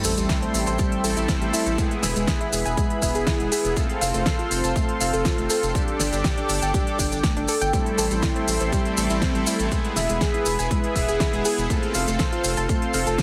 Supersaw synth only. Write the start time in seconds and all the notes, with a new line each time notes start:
Already playing: G3 A3 C4 E4 A4
1.04 G3 A3 C4 E4 A4
1.78 B3 E4 G#4
3.02 B3 E4 G#4
3.77 C4 F4 A4
5.01 C4 F4 A4
5.75 D4 G4 A4
7.73 G3 A3 C4 E4 A4
8.97 G3 A3 C4 E4 A4
9.72 B3 E4 G#4
10.96 B3 E4 G#4
11.70 C4 F4 A4
12.94 C4 F4 A4